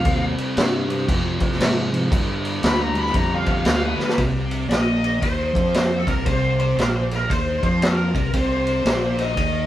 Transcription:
Already playing: F5
0.05 D#2 C3 G3 C4, kick, crash
0.38 muted fretless electric bass stroke, crash
0.57 G2, snare, crash
0.88 C3 G3 C4, crash
1.06 F2 C3 F3, kick, crash
1.40 kick, crash
1.52 snare
1.60 G#2, snare, crash
1.91 F2 C3 F3, crash
2.10 G2 D3 G3, kick, crash
2.45 crash
2.63 D2 B5, snare, crash
2.81 A#5
2.94 G2 D3 G3, crash
2.98 B5
3.06 snare
3.14 F2 A#5, kick, crash
3.35 F5
3.46 kick, crash
3.52 F5
3.64 D2 G2 D3 G3 F5, snare, crash
3.84 B4
3.99 snare
4.09 snare
4.17 C2 C3, kick, ride
4.51 ride
4.69 A#1 A#2 D#5, snare, ride
5.04 ride
5.20 D#2 D#3 C5, kick, ride
5.54 F2 F3, kick, ride
5.74 snare, ride
5.99 A4
6.07 C2 C3 A#4, kick, ride
6.25 C2 C3 C5, kick, ride
6.60 C5, ride
6.77 A#1 A#2 A#4, snare, ride
6.96 C5
7.11 A#4, snare, ride
7.29 D#2 D#3 C5, kick, ride
7.63 F2 F3 C5, kick, ride
7.82 A#4, snare, ride
8.15 C2 C3, kick, ride
8.33 C2 C3 C5, kick, ride
8.67 ride
8.85 A#1 A#2, snare, ride
9.19 D#5, snare, ride
9.36 D#2 D#3, kick, ride

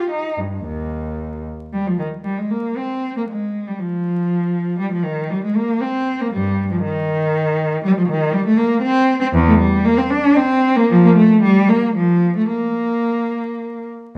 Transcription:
Already playing: F4
0.10 D#4
0.37 G2
0.65 D#2
1.73 G3
1.87 F3
1.99 D#3
2.24 G3
2.38 G#3
2.50 A#3
2.77 C4
3.17 A#3
3.29 G#3
3.67 G3
3.79 F3
4.79 G3
4.92 F3
5.04 D#3
5.30 G3
5.44 G#3
5.56 A#3
5.81 C4
6.21 A#3
6.33 G2 G3
6.71 F3
6.82 D#3
7.84 G3
7.97 F3
8.08 D#3
8.33 G3
8.46 A3
8.57 A#3
8.82 C4
9.21 C4
9.33 E2
9.47 A3
9.59 G3
9.85 A#3
9.97 C4
10.10 D4
10.36 C4
10.76 A#3
10.90 F3
11.05 A#3
11.16 A3
11.43 G3
11.69 A#3
11.96 F3
12.37 A3
12.50 A#3

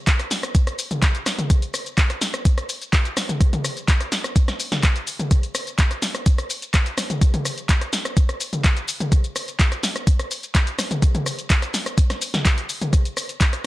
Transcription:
0.07 kick, clap, closed hi-hat, shaker
0.20 cross-stick, closed hi-hat, shaker
0.31 snare, open hi-hat, shaker
0.43 cross-stick, closed hi-hat, shaker
0.55 kick, closed hi-hat, shaker
0.67 cross-stick, closed hi-hat, shaker
0.79 open hi-hat, shaker
0.91 closed hi-hat, mid tom, shaker
1.02 kick, cross-stick, clap, closed hi-hat, shaker
1.15 closed hi-hat, shaker
1.26 cross-stick, snare, open hi-hat, shaker
1.39 closed hi-hat, mid tom, shaker
1.50 kick, cross-stick, closed hi-hat, shaker
1.62 closed hi-hat, shaker
1.74 cross-stick, open hi-hat, shaker
1.86 closed hi-hat, shaker
1.98 kick, clap, closed hi-hat, shaker
2.10 cross-stick, closed hi-hat, shaker
2.21 snare, open hi-hat, shaker
2.34 cross-stick, closed hi-hat, shaker
2.45 kick, closed hi-hat, shaker
2.58 cross-stick, closed hi-hat, shaker
2.69 open hi-hat, shaker
2.82 closed hi-hat, shaker
2.93 kick, cross-stick, clap, closed hi-hat, shaker
3.05 closed hi-hat, shaker
3.17 cross-stick, snare, open hi-hat, shaker
3.29 closed hi-hat, mid tom, shaker
3.41 kick, cross-stick, closed hi-hat, shaker
3.53 closed hi-hat, mid tom, shaker
3.65 cross-stick, open hi-hat, shaker
3.77 closed hi-hat, shaker
3.88 kick, clap, closed hi-hat, shaker
4.01 cross-stick, closed hi-hat, shaker
4.12 snare, open hi-hat, shaker
4.24 cross-stick, closed hi-hat, shaker
4.36 kick, closed hi-hat, shaker
4.48 cross-stick, snare, closed hi-hat, shaker
4.60 open hi-hat, shaker
4.72 snare, closed hi-hat, mid tom, shaker
4.83 kick, cross-stick, clap, closed hi-hat, shaker
4.96 closed hi-hat, shaker
5.07 open hi-hat, shaker
5.19 closed hi-hat, mid tom, shaker
5.31 kick, cross-stick, closed hi-hat, shaker
5.43 closed hi-hat, shaker
5.55 cross-stick, open hi-hat, shaker
5.67 closed hi-hat, shaker
5.79 kick, clap, closed hi-hat, shaker
5.91 cross-stick, closed hi-hat, shaker
6.02 snare, open hi-hat, shaker
6.15 cross-stick, closed hi-hat, shaker
6.26 kick, closed hi-hat, shaker
6.38 cross-stick, closed hi-hat, shaker
6.50 open hi-hat, shaker
6.62 closed hi-hat, shaker
6.74 kick, cross-stick, clap, closed hi-hat, shaker
6.86 closed hi-hat, shaker
6.98 cross-stick, snare, open hi-hat, shaker
7.10 closed hi-hat, mid tom, shaker
7.21 kick, cross-stick, closed hi-hat, shaker
7.34 closed hi-hat, mid tom, shaker
7.45 cross-stick, open hi-hat, shaker
7.58 closed hi-hat, shaker
7.69 kick, clap, closed hi-hat, shaker
7.81 cross-stick, closed hi-hat, shaker
7.93 snare, open hi-hat, shaker
8.05 cross-stick, closed hi-hat, shaker
8.17 kick, closed hi-hat, shaker
8.29 cross-stick, closed hi-hat, shaker
8.40 open hi-hat, shaker
8.53 closed hi-hat, mid tom, shaker
8.64 kick, cross-stick, clap, closed hi-hat, shaker
8.77 closed hi-hat, shaker
8.88 open hi-hat, shaker
9.00 closed hi-hat, mid tom, shaker
9.12 kick, cross-stick, closed hi-hat, shaker
9.24 closed hi-hat, shaker
9.36 cross-stick, open hi-hat, shaker
9.48 closed hi-hat, shaker
9.59 kick, clap, closed hi-hat, shaker
9.72 cross-stick, closed hi-hat, shaker
9.83 snare, open hi-hat, shaker
9.96 cross-stick, closed hi-hat, shaker
10.07 kick, closed hi-hat, shaker
10.19 cross-stick, closed hi-hat, shaker
10.31 open hi-hat, shaker
10.43 closed hi-hat, shaker
10.55 kick, cross-stick, clap, closed hi-hat, shaker
10.67 closed hi-hat, shaker
10.79 cross-stick, snare, open hi-hat, shaker
10.91 closed hi-hat, mid tom, shaker
11.02 kick, cross-stick, closed hi-hat, shaker
11.15 closed hi-hat, mid tom, shaker
11.26 cross-stick, open hi-hat, shaker
11.39 closed hi-hat, shaker
11.50 kick, clap, closed hi-hat, shaker
11.62 cross-stick, closed hi-hat, shaker
11.74 snare, open hi-hat, shaker
11.86 cross-stick, closed hi-hat, shaker
11.98 kick, closed hi-hat, shaker
12.10 cross-stick, snare, closed hi-hat, shaker
12.22 open hi-hat, shaker
12.34 snare, closed hi-hat, mid tom, shaker
12.45 kick, cross-stick, clap, closed hi-hat, shaker
12.58 closed hi-hat, shaker
12.69 open hi-hat, shaker
12.82 closed hi-hat, mid tom, shaker
12.93 kick, cross-stick, closed hi-hat, shaker
13.05 closed hi-hat, shaker
13.17 cross-stick, open hi-hat, shaker
13.29 closed hi-hat, shaker
13.41 kick, clap, closed hi-hat, shaker
13.53 cross-stick, closed hi-hat, shaker

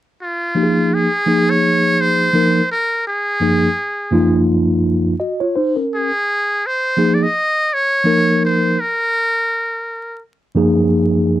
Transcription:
0.22 F4
0.55 F3 A#3 D#4 G4
0.63 G#4
0.94 G#4
1.26 F3 A#3 D#4 G#4
1.50 C#5
2.01 C5
2.33 F3 A#3 D#4 A#4
2.72 A#4
3.08 G#4
3.40 F#2 F3 A#3 D#4 G#4
4.11 F#2 F3 A#3 D#4 F4
5.20 F#4 D#5
5.40 F4 C#5
5.56 D#4 C5
5.76 C#4 A#4
5.95 G#4
6.67 C5
6.97 F3 A#3 D#4 G#4
7.14 D5
7.23 D#5
7.74 C#5
8.04 F3 A#3 D#4 A#4
8.45 C5
8.80 A#4
10.55 F#2 F3 A#3 D#4 G#4

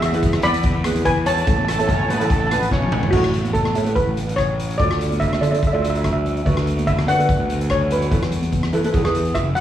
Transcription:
Already playing: E2
0.02 E5, cross-stick, closed hi-hat
0.12 E4 G#4 B4, closed hi-hat, high conga
0.22 kick, closed hi-hat, low conga
0.33 cross-stick
0.42 E2 D5 B5, closed hi-hat, high conga, low conga
0.54 closed hi-hat
0.63 kick, closed hi-hat
0.84 E4 G#4 B4, cross-stick, closed hi-hat, high conga
0.95 E2, closed hi-hat
1.05 B4 G#5, kick, closed hi-hat
1.26 C#5 A5, closed hi-hat, low conga
1.34 A5, closed hi-hat
1.42 A5
1.46 A1 E4 A4 C#5 A5, kick, closed hi-hat
1.57 A5, high conga
1.65 A3 A4 A5, cross-stick, closed hi-hat
1.72 A5
1.79 E4 A4 C#5 A5, closed hi-hat, high conga
1.88 C#4 C#5 A5, kick, closed hi-hat, low conga
1.94 A5
2.01 A5
2.08 A1 B3 B4 A5, closed hi-hat, high conga, low conga
2.17 E4 A4 C#5 A5, closed hi-hat
2.25 G#3 G#4 A5
2.30 A3 A4 A5, kick, closed hi-hat
2.40 A5
2.47 B3 B4 A5
2.51 A5, cross-stick, closed hi-hat, high conga
2.61 A1, closed hi-hat
2.71 B1 C#4 C#5, kick, snare
2.83 high tom
2.92 A1, mid tom, low conga
3.03 floor tom
3.11 A1 E4 F#4 A4 C#5, kick, crash, low conga
3.24 cross-stick
3.34 closed hi-hat
3.44 closed hi-hat, high conga
3.53 A4, kick, closed hi-hat
3.65 cross-stick, high conga
3.75 A2 E4 A4 C#5, closed hi-hat, low conga
3.85 E4 A4 B4, closed hi-hat, high conga
3.96 B4, kick, closed hi-hat
4.07 A1
4.17 closed hi-hat
4.29 closed hi-hat
4.36 C#5, kick, cross-stick, closed hi-hat
4.59 closed hi-hat
4.70 closed hi-hat
4.78 D2 F4 A4 D5, kick, closed hi-hat, low conga
4.91 cross-stick
5.01 closed hi-hat
5.11 closed hi-hat, high conga
5.20 E5, kick, closed hi-hat
5.28 E5, high conga
5.33 E5, cross-stick
5.41 D3 F4 A4 D5 E5, closed hi-hat, low conga
5.51 F4 A4 D5 E5, closed hi-hat, high conga
5.59 E5, kick
5.63 E5, closed hi-hat
5.73 D2 F4 A4 D5 E5
5.82 E5, closed hi-hat
5.90 E5
5.95 E5, closed hi-hat
6.04 E5, kick, cross-stick, closed hi-hat
6.13 E5
6.24 closed hi-hat, low conga
6.36 closed hi-hat
6.45 D2 F#4 B4 D5, kick, closed hi-hat, low conga
6.57 cross-stick
6.67 closed hi-hat
6.77 closed hi-hat, high conga
6.87 E5, kick, closed hi-hat
6.98 cross-stick, high conga
7.07 D3 F#4 B4 D5 F#5, closed hi-hat, low conga
7.18 F#4 B4 D5, closed hi-hat, high conga
7.29 kick, closed hi-hat
7.39 D2
7.49 closed hi-hat
7.61 closed hi-hat
7.70 C#5, kick, cross-stick, closed hi-hat
7.90 B4, closed hi-hat, low conga
8.02 closed hi-hat
8.11 E2 E4 A4 B4, kick, closed hi-hat, low conga
8.22 cross-stick
8.31 closed hi-hat, low conga
8.42 closed hi-hat, high conga
8.52 kick, closed hi-hat, high conga
8.63 cross-stick, high conga
8.73 E3 E4 A4 B4, closed hi-hat, low conga
8.84 E4 A4 B4, closed hi-hat, high conga
8.92 E2 E4 G#4 B4, kick, closed hi-hat
9.04 E2 E4 G#4 B4, cross-stick
9.15 closed hi-hat
9.25 closed hi-hat
9.35 F#1 E5, kick, cross-stick, closed hi-hat
9.55 G#1 F#5, closed hi-hat, low conga

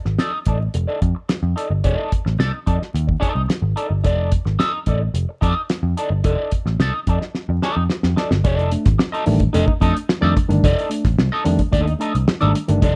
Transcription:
0.05 G#1, muted clean electric guitar stroke, snare
0.19 D#4 A4 D5, snare, closed hi-hat
0.34 muted clean electric guitar stroke
0.46 A1 D#4 A4 D5, kick, closed hi-hat
0.60 muted clean electric guitar stroke
0.74 F1, muted clean electric guitar stroke, closed hi-hat
0.87 D#4 A4 D5
1.01 F2, muted clean electric guitar stroke, kick, closed hi-hat
1.15 muted clean electric guitar stroke
1.29 muted clean electric guitar stroke, snare, closed hi-hat
1.43 F2
1.56 D#4 A4 D5, closed hi-hat
1.70 G1, muted clean electric guitar stroke
1.84 F1 D4 G#4 D5, kick, closed hi-hat
1.95 D#4 A4
2.12 kick, closed hi-hat
2.25 A1, muted clean electric guitar stroke, snare
2.39 C2 D#4 A4 D5, snare, closed hi-hat
2.53 muted clean electric guitar stroke
2.66 F2 D#4 A4 D5, kick, closed hi-hat
2.80 muted clean electric guitar stroke, snare
2.94 D#2, closed hi-hat
3.07 muted clean electric guitar stroke, kick
3.20 D#4 A4 D5, kick, closed hi-hat
3.34 C2, muted clean electric guitar stroke
3.48 muted clean electric guitar stroke, muted picked electric bass stroke, snare, closed hi-hat
3.62 G#1
3.76 D#4 A4 D5, closed hi-hat
3.89 G1, muted clean electric guitar stroke
4.04 F1 D#4 A4 D5, kick, closed hi-hat
4.32 kick, closed hi-hat
4.45 G#1, muted clean electric guitar stroke, snare
4.59 D#4 A4 D5, snare, closed hi-hat
4.74 muted clean electric guitar stroke
4.86 A1 D#4 A4 D5, kick, closed hi-hat
5.02 muted clean electric guitar stroke
5.14 F1, closed hi-hat
5.29 muted clean electric guitar stroke
5.41 F2 D#4 A4 D5, kick, closed hi-hat
5.56 muted clean electric guitar stroke
5.70 muted clean electric guitar stroke, snare, closed hi-hat
5.83 F2
5.97 D#4 A4 D5, closed hi-hat
6.10 G1, muted clean electric guitar stroke
6.24 F1 D#4 A4 D5, kick, closed hi-hat
6.51 kick, closed hi-hat
6.66 A1, muted clean electric guitar stroke, snare
6.80 C2 D#4 A4 D5, snare, closed hi-hat
6.95 muted clean electric guitar stroke
7.07 F2 D#4 A4 D5, kick, closed hi-hat
7.21 muted clean electric guitar stroke, snare
7.35 snare
7.49 F2, muted clean electric guitar stroke
7.62 D#4 A4 D5, snare
7.77 F2, muted clean electric guitar stroke
7.90 muted clean electric guitar stroke, snare
8.03 F2, snare
8.16 D#4 A4 D5, snare
8.31 G1, snare
8.44 F1 D4 A4 D5, kick, closed hi-hat
8.55 D#4, closed hi-hat
8.72 A3 D4, closed hi-hat
8.85 G#1, muted clean electric guitar stroke, kick, snare, closed hi-hat
8.98 muted clean electric guitar stroke, snare
9.12 D#4 A4 D#5, closed hi-hat
9.26 A1 D#3 G3 A3 D4, muted clean electric guitar stroke, open hi-hat
9.40 muted clean electric guitar stroke, kick, closed hi-hat
9.53 F1 A3 D4 D#4 A4 D#5, closed hi-hat
9.68 muted clean electric guitar stroke, kick
9.81 F2 A3 D4 D#4 A4 D#5, kick, closed hi-hat
9.95 muted clean electric guitar stroke, closed hi-hat
10.09 muted clean electric guitar stroke, snare
10.21 F2 D#3 G3 A3 D4 D#4 A4 D5
10.36 muted clean electric guitar stroke, kick, closed hi-hat
10.49 G1 D#3 G3 A3 D4, muted clean electric guitar stroke, closed hi-hat
10.64 F1 D#4 A4 D5, kick, closed hi-hat
10.79 closed hi-hat
10.90 A3 D4, closed hi-hat
11.05 A1, muted clean electric guitar stroke, kick, snare, closed hi-hat
11.19 C2, muted clean electric guitar stroke, snare
11.32 D#4 A4 D#5
11.44 F2 D#3 G3 A3 D4, closed hi-hat
11.59 muted clean electric guitar stroke, kick, closed hi-hat
11.71 D#2 A3 D4 D#4 A4 D#5, kick, closed hi-hat
11.87 muted clean electric guitar stroke, closed hi-hat
11.99 A3 D4 D#4 A4 D#5, closed hi-hat
12.15 C2, muted clean electric guitar stroke, closed hi-hat
12.28 muted clean electric guitar stroke, muted picked electric bass stroke, snare
12.40 G#1 D#3 G3 A3 D4 D#4 A4 D5, closed hi-hat
12.54 muted clean electric guitar stroke, closed hi-hat
12.68 G1 D#3 G3 A3 D4, muted clean electric guitar stroke, closed hi-hat
12.82 F1 D#4 A4 D5, kick, closed hi-hat

